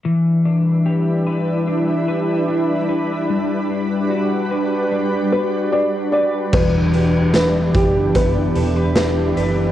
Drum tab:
CC |--------|--------|x-------|
HH |--------|--------|-xxxxxxx|
SD |--------|--------|--o---o-|
BD |--------|--------|o--oo---|